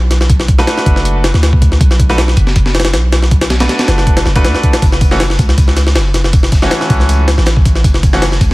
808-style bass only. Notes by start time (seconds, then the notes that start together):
Already playing: B1
0.86 F#1
1.34 D2
1.81 B1
2.37 F#1
2.94 B1
3.88 F#1
4.26 F#1
4.45 E2
4.82 F#1
5.39 C#2
5.96 F#1
6.90 C#2
7.38 A1
7.84 F#1
8.41 C#2